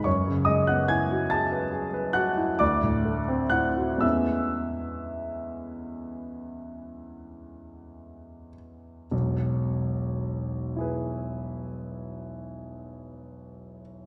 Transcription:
0.04 2.57 F#2 soft
0.04 0.45 C#5 soft
0.04 0.47 C#6 medium
0.28 0.61 C#3 soft
0.45 0.81 G#3 soft
0.45 0.66 D#5 soft
0.45 0.67 D#6 medium
0.67 1.02 B3 soft
0.67 0.88 F#5 soft
0.67 0.89 F#6 medium
0.88 1.23 E4 soft
0.88 1.28 G#5 medium
0.88 1.30 G#6 medium
1.11 1.44 F#4 soft
1.30 1.65 G#4 soft
1.30 2.12 A5 medium
1.30 2.15 A6 medium
1.52 1.86 B4 soft
1.72 2.07 G#4 soft
1.94 2.29 B4 soft
2.13 2.51 F#4 soft
2.13 2.56 F#5 medium
2.13 2.59 F#6 medium
2.37 2.60 E4 soft
2.59 3.98 D2 medium
2.59 3.48 D5 medium
2.59 3.52 D6 medium
2.83 3.20 A2 soft
3.05 3.43 A3 soft
3.28 3.67 C4 soft
3.50 3.92 E4 soft
3.50 3.98 F#5 medium
3.50 4.01 F#6 medium
3.77 4.02 F#4 soft
3.98 9.05 E2 soft
3.98 9.06 G#3 soft
3.98 9.06 B3 soft
3.98 9.07 C#4 soft
3.98 9.07 E4 soft
3.98 8.53 E6 medium
4.02 8.49 E5 medium
9.11 13.82 E1 soft
9.11 13.81 B1 soft
10.76 14.06 E4 soft
10.76 14.06 G#4 soft
10.81 14.06 B4 soft

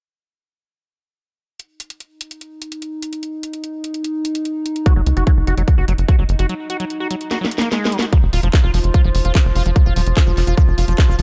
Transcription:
1.60 8.13 D#4 medium
1.60 closed hi-hat medium
1.80 closed hi-hat medium
1.90 closed hi-hat medium
2.00 closed hi-hat medium
2.21 closed hi-hat medium
2.31 closed hi-hat medium
2.41 closed hi-hat medium
2.62 closed hi-hat medium
2.72 closed hi-hat medium
2.82 closed hi-hat medium
3.02 closed hi-hat medium
3.13 closed hi-hat medium
3.23 closed hi-hat medium
3.43 closed hi-hat medium
3.53 closed hi-hat medium
3.64 closed hi-hat medium
3.84 closed hi-hat medium
3.94 closed hi-hat medium
4.04 closed hi-hat medium
4.25 closed hi-hat loud
4.35 closed hi-hat medium
4.45 closed hi-hat medium
4.66 closed hi-hat medium
4.76 closed hi-hat medium
4.86 4.94 F#4 medium
4.86 kick loud
4.86 closed hi-hat medium
4.96 5.03 F#1 medium
4.96 5.01 F#3 medium
5.06 5.13 C#2 medium
5.06 closed hi-hat medium
5.17 5.24 F#1 medium
5.17 5.24 F#4 medium
5.17 closed hi-hat medium
5.27 5.32 F#3 medium
5.27 kick loud
5.27 closed hi-hat medium
5.37 5.44 F#1 medium
5.47 5.54 F#1 loud
5.47 5.55 F#4 medium
5.47 closed hi-hat medium
5.57 5.64 F#1 medium
5.57 5.63 F#3 medium
5.57 closed hi-hat medium
5.68 kick loud
5.68 closed hi-hat medium
5.78 5.85 F#1 medium
5.78 5.85 F#4 medium
5.88 5.95 F#1 loud
5.88 5.93 F#3 medium
5.88 closed hi-hat medium
5.98 6.05 F#1 medium
5.98 closed hi-hat medium
6.08 6.16 F#4 medium
6.08 kick loud
6.08 closed hi-hat medium
6.19 6.26 F#1 medium
6.19 6.24 F#3 medium
6.29 6.36 F#1 loud
6.29 closed hi-hat medium
6.39 6.46 F#1 loud
6.39 6.47 F#4 medium
6.39 closed hi-hat medium
6.49 6.54 F#3 medium
6.49 closed hi-hat medium
6.70 6.77 F#4 medium
6.70 closed hi-hat medium
6.80 6.85 F#3 medium
6.80 closed hi-hat medium
6.90 closed hi-hat medium
7.00 7.08 F#4 medium
7.11 7.16 F#3 medium
7.11 closed hi-hat medium
7.21 closed hi-hat medium
7.31 7.38 F#4 medium
7.31 snare medium
7.31 closed hi-hat medium
7.41 7.46 F#3 medium
7.41 snare medium
7.51 closed hi-hat medium
7.58 7.69 A#3 medium
7.58 snare medium
7.58 closed hi-hat medium
7.72 7.94 G#3 medium
7.72 snare medium
7.72 closed hi-hat medium
7.85 snare loud
7.92 7.97 F#3 medium
7.92 closed hi-hat medium
7.99 8.05 F#4 medium
7.99 snare loud
7.99 closed hi-hat medium
8.13 8.18 F3 medium
8.13 11.22 F3 medium
8.13 11.22 F4 medium
8.13 kick loud
8.13 closed hi-hat medium
8.23 8.30 F1 medium
8.33 8.40 D#1 loud
8.33 8.41 F4 medium
8.33 open hi-hat loud
8.43 8.50 F1 medium
8.43 8.48 F3 medium
8.43 closed hi-hat medium
8.53 kick loud
8.53 clap loud
8.53 closed hi-hat medium
8.64 8.70 F1 medium
8.64 8.71 F4 medium
8.74 8.81 F1 loud
8.74 8.79 F3 medium
8.74 open hi-hat loud
8.84 8.91 F1 medium
8.84 closed hi-hat medium
8.94 9.02 F4 medium
8.94 kick loud
8.94 closed hi-hat medium
9.04 9.11 F1 medium
9.04 9.09 F3 medium
9.15 9.22 F1 loud
9.15 open hi-hat loud
9.25 9.32 F1 medium
9.25 9.32 F4 medium
9.25 closed hi-hat medium
9.35 9.40 F3 medium
9.35 kick loud
9.35 clap loud
9.35 closed hi-hat medium
9.45 9.52 F1 medium
9.55 9.62 F1 loud
9.55 9.63 F4 medium
9.55 open hi-hat loud
9.66 9.73 F1 medium
9.66 9.71 F3 medium
9.66 closed hi-hat medium
9.76 kick loud
9.76 closed hi-hat medium
9.86 9.93 F1 medium
9.86 9.94 F4 medium
9.96 10.03 D#1 loud
9.96 10.01 F3 medium
9.96 open hi-hat loud
10.06 10.13 F1 medium
10.06 closed hi-hat medium
10.17 10.24 F4 medium
10.17 kick loud
10.17 clap loud
10.17 closed hi-hat medium
10.27 10.34 F1 medium
10.27 10.32 F3 medium
10.37 10.44 F1 loud
10.37 clap soft
10.37 open hi-hat loud
10.47 10.54 F1 loud
10.47 10.55 F4 medium
10.47 closed hi-hat medium
10.57 10.62 F3 medium
10.57 kick loud
10.57 closed hi-hat medium
10.68 10.75 F1 medium
10.78 10.85 F1 loud
10.78 10.85 F4 medium
10.78 open hi-hat loud
10.88 10.95 F1 medium
10.88 10.93 F3 medium
10.88 closed hi-hat medium
10.98 kick loud
10.98 clap loud
10.98 closed hi-hat medium
11.08 11.15 F1 medium
11.08 11.16 F4 medium
11.19 11.22 F1 loud
11.19 11.22 F3 medium
11.19 open hi-hat loud

